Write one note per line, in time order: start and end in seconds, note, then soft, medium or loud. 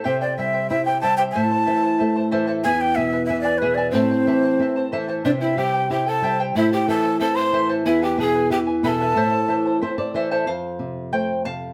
0.04 1.31 C3 medium
0.04 0.21 E4 medium
0.04 0.21 G4 medium
0.04 0.21 C5 medium
0.04 0.20 C5 medium
0.04 0.21 E5 medium
0.04 0.20 G5 medium
0.21 0.37 E4 soft
0.21 0.38 C5 soft
0.21 0.36 D5 medium
0.21 0.37 G5 soft
0.37 0.69 G3 medium
0.37 0.53 E4 medium
0.37 0.53 C5 medium
0.37 0.68 E5 medium
0.37 0.54 E5 medium
0.37 0.52 G5 medium
0.53 0.70 E4 soft
0.53 0.69 C5 soft
0.53 0.70 G5 soft
0.70 1.02 E4 medium
0.70 0.86 E4 medium
0.70 0.86 C5 medium
0.70 0.86 E5 medium
0.70 0.85 E5 medium
0.70 0.85 G5 medium
0.85 1.01 E4 soft
0.85 1.01 C5 soft
0.85 1.01 G5 loud
0.85 1.02 G5 medium
1.01 1.34 G3 soft
1.01 1.18 E4 medium
1.01 1.18 G4 medium
1.01 1.18 C5 medium
1.01 1.18 E5 medium
1.01 1.17 G5 medium
1.01 1.16 A5 loud
1.17 1.34 E4 medium
1.17 1.35 G4 medium
1.17 1.34 C5 medium
1.17 1.34 E5 medium
1.17 1.23 G5 medium
1.17 1.35 G5 medium
1.31 1.51 E4 medium
1.31 1.51 A4 medium
1.31 1.51 E5 medium
1.31 2.27 A5 loud
1.36 2.61 A2 medium
1.36 1.50 C5 medium
1.36 1.49 A5 medium
1.50 1.66 E4 soft
1.50 1.66 C5 medium
1.50 1.66 A5 medium
1.66 1.99 E3 medium
1.66 1.82 E4 medium
1.66 1.82 C5 medium
1.66 1.82 E5 medium
1.66 1.82 A5 medium
1.83 1.98 E4 soft
1.83 1.98 C5 soft
1.83 1.99 A5 soft
1.98 2.32 A3 medium
1.98 2.16 E4 medium
1.98 2.15 C5 medium
1.98 2.15 E5 medium
1.98 2.14 A5 medium
2.16 2.31 E4 soft
2.16 2.31 C5 medium
2.16 2.31 A5 medium
2.31 2.64 E3 medium
2.31 2.47 E4 medium
2.31 2.47 A4 medium
2.31 2.47 C5 loud
2.31 2.47 E5 medium
2.31 2.46 A5 loud
2.47 2.63 E4 medium
2.47 2.65 A4 medium
2.47 2.64 C5 medium
2.47 2.63 E5 medium
2.47 2.64 A5 medium
2.64 3.91 E2 medium
2.64 2.80 E4 medium
2.64 2.81 G#4 medium
2.64 2.79 B4 medium
2.64 2.81 E5 medium
2.64 2.82 G#5 loud
2.64 2.79 G#5 medium
2.80 2.95 E4 soft
2.80 2.96 B4 soft
2.80 2.97 G5 medium
2.80 2.96 G#5 medium
2.95 3.29 B2 medium
2.95 3.12 E4 medium
2.95 3.12 B4 medium
2.95 3.25 E5 loud
2.95 3.13 E5 medium
2.95 3.11 G#5 medium
3.13 3.28 E4 soft
3.13 3.28 B4 soft
3.13 3.29 G#5 medium
3.26 3.45 E4 medium
3.26 3.44 B4 medium
3.26 3.41 E5 medium
3.26 3.46 E5 medium
3.30 3.61 E3 medium
3.30 3.43 G#5 medium
3.41 3.60 D5 medium
3.41 3.62 G#5 medium
3.46 3.61 E4 soft
3.46 3.62 B4 medium
3.58 3.77 G#4 medium
3.58 3.76 B4 medium
3.58 3.77 E5 medium
3.62 3.93 B2 medium
3.62 3.77 E4 medium
3.62 3.77 B4 medium
3.62 3.76 G#5 medium
3.75 3.93 E4 medium
3.75 3.94 G#4 medium
3.75 3.93 B4 medium
3.75 3.91 D5 medium
3.75 3.93 E5 medium
3.75 3.94 G#5 medium
3.91 5.20 A2 medium
3.91 4.87 C4 medium
3.91 4.11 E4 medium
3.91 4.10 A4 medium
3.91 4.87 C5 medium
3.91 4.11 C5 medium
3.91 4.11 E5 medium
3.91 4.10 A5 medium
4.11 4.26 E4 soft
4.11 4.27 C5 soft
4.11 4.27 A5 soft
4.27 4.59 E3 medium
4.27 4.44 E4 medium
4.27 4.43 C5 medium
4.27 4.43 E5 medium
4.27 4.42 A5 medium
4.43 4.60 E4 soft
4.43 4.60 C5 soft
4.43 4.60 A5 medium
4.59 4.91 C4 medium
4.59 4.77 E4 medium
4.59 4.76 C5 medium
4.59 4.76 E5 medium
4.59 4.75 A5 medium
4.76 4.92 E4 soft
4.76 4.92 C5 medium
4.76 4.92 A5 medium
4.92 5.24 E3 soft
4.92 5.08 E4 medium
4.92 5.08 A4 medium
4.92 5.08 C5 medium
4.92 5.08 E5 medium
4.92 5.07 A5 medium
5.08 5.24 E4 medium
5.08 5.24 A4 medium
5.08 5.24 C5 medium
5.08 5.23 E5 medium
5.08 5.25 A5 medium
5.24 6.51 C3 medium
5.24 5.31 D4 medium
5.24 5.41 E4 medium
5.24 5.41 G4 medium
5.24 5.40 C5 medium
5.24 5.32 D5 medium
5.24 5.41 E5 medium
5.24 5.40 G5 medium
5.41 5.59 E4 medium
5.41 5.56 E4 soft
5.41 5.57 C5 soft
5.41 5.60 E5 medium
5.41 5.57 G5 medium
5.57 5.89 G3 medium
5.57 5.74 E4 medium
5.57 5.89 G4 medium
5.57 5.73 C5 medium
5.57 5.74 E5 medium
5.57 5.73 G5 medium
5.57 5.91 G5 medium
5.74 5.89 E4 soft
5.74 5.90 C5 soft
5.74 5.90 G5 soft
5.90 6.22 E4 medium
5.90 6.07 E4 medium
5.90 6.09 G4 medium
5.90 6.07 C5 medium
5.90 6.07 E5 medium
5.90 6.05 G5 medium
5.90 6.10 G5 medium
6.06 6.23 E4 soft
6.06 6.39 A4 medium
6.06 6.23 C5 soft
6.06 6.23 G5 medium
6.06 6.40 A5 loud
6.22 6.54 G3 medium
6.22 6.40 E4 medium
6.22 6.39 G4 medium
6.22 6.39 C5 medium
6.22 6.39 E5 medium
6.22 6.38 G5 medium
6.40 6.56 E4 medium
6.40 6.56 G4 medium
6.40 6.56 C5 medium
6.40 6.56 E5 medium
6.40 6.56 G5 medium
6.55 7.82 A2 medium
6.55 6.71 E4 medium
6.55 6.73 E4 medium
6.55 6.72 A4 medium
6.55 6.72 C5 medium
6.55 6.72 E5 medium
6.55 6.71 E5 medium
6.55 6.71 A5 medium
6.72 6.88 E4 soft
6.72 6.87 G4 medium
6.72 6.88 C5 soft
6.72 6.88 G5 medium
6.72 6.88 A5 medium
6.88 7.20 E3 medium
6.88 7.04 E4 medium
6.88 7.18 A4 medium
6.88 7.03 C5 medium
6.88 7.04 E5 medium
6.88 7.19 A5 medium
6.88 7.02 A5 medium
7.04 7.19 E4 soft
7.04 7.19 C5 soft
7.04 7.20 A5 medium
7.19 7.52 C4 medium
7.19 7.37 E4 medium
7.19 7.37 A4 medium
7.19 7.37 C5 medium
7.19 7.36 E5 medium
7.19 7.37 A5 medium
7.19 7.36 A5 medium
7.35 7.53 E4 soft
7.35 7.69 C5 medium
7.35 7.53 C5 medium
7.35 7.53 A5 medium
7.35 7.69 C6 loud
7.53 7.85 E3 medium
7.53 7.68 E4 medium
7.53 7.68 A4 medium
7.53 7.68 C5 medium
7.53 7.69 E5 medium
7.53 7.68 A5 medium
7.69 7.85 E4 medium
7.69 7.86 A4 medium
7.69 7.85 C5 medium
7.69 7.85 E5 medium
7.69 7.86 A5 medium
7.86 9.12 E2 medium
7.86 8.05 E4 medium
7.86 8.02 E4 medium
7.86 8.02 G#4 medium
7.86 8.01 B4 medium
7.86 8.02 E5 medium
7.86 8.05 E5 medium
7.86 8.01 G#5 medium
8.02 8.17 E4 soft
8.02 8.21 G4 medium
8.02 8.18 B4 soft
8.02 8.21 G5 medium
8.02 8.17 G#5 medium
8.18 8.50 B2 medium
8.18 8.35 E4 medium
8.18 8.51 G#4 medium
8.18 8.34 B4 medium
8.18 8.34 E5 medium
8.18 8.33 G#5 medium
8.18 8.25 A5 medium
8.24 8.51 G#5 medium
8.34 8.49 E4 soft
8.34 8.50 B4 soft
8.34 8.50 G#5 medium
8.50 8.82 E3 medium
8.50 8.67 E4 medium
8.50 8.59 G4 medium
8.50 8.66 B4 medium
8.50 8.67 E5 medium
8.50 8.58 G5 medium
8.50 8.66 G#5 medium
8.67 8.83 E4 soft
8.67 8.83 B4 soft
8.67 8.83 G#5 medium
8.83 9.15 B2 medium
8.83 9.00 E4 medium
8.83 9.00 G#4 medium
8.83 9.78 A4 medium
8.83 8.99 B4 medium
8.83 9.00 E5 medium
8.83 8.99 G#5 medium
8.83 8.89 B5 medium
8.88 9.78 A5 medium
9.00 9.16 E4 medium
9.00 9.17 G#4 medium
9.00 9.16 B4 medium
9.00 9.15 E5 medium
9.00 9.17 G#5 medium
9.16 10.43 A2 medium
9.16 9.32 E4 medium
9.16 9.33 A4 medium
9.16 9.32 C5 medium
9.16 9.33 E5 medium
9.16 9.31 A5 medium
9.32 9.48 E4 soft
9.32 9.48 C5 soft
9.32 9.49 A5 medium
9.48 9.81 E3 medium
9.48 9.65 E4 medium
9.48 9.65 C5 medium
9.48 9.65 E5 medium
9.48 9.65 A5 medium
9.66 9.81 E4 soft
9.66 9.81 C5 medium
9.66 9.82 A5 medium
9.81 10.14 C4 medium
9.81 9.98 E4 medium
9.81 9.97 C5 medium
9.81 9.98 C5 medium
9.81 9.98 E5 medium
9.81 9.97 A5 medium
9.98 10.14 E4 soft
9.98 10.14 C5 medium
9.98 10.44 D5 medium
9.98 10.14 A5 medium
10.14 10.46 E3 soft
10.14 10.31 E4 medium
10.14 10.31 A4 medium
10.14 10.30 C5 medium
10.14 10.31 E5 medium
10.14 10.30 A5 medium
10.31 10.48 E4 medium
10.31 10.48 A4 medium
10.31 10.47 C5 medium
10.31 10.47 E5 medium
10.31 10.48 A5 medium
10.46 11.73 F2 medium
10.46 11.09 C5 medium
10.46 11.09 F5 medium
10.79 11.12 C3 soft
11.12 11.44 A3 soft
11.12 11.44 C5 medium
11.12 11.45 G5 medium
11.45 11.73 C3 soft
11.45 11.73 F5 medium
11.45 11.73 A5 medium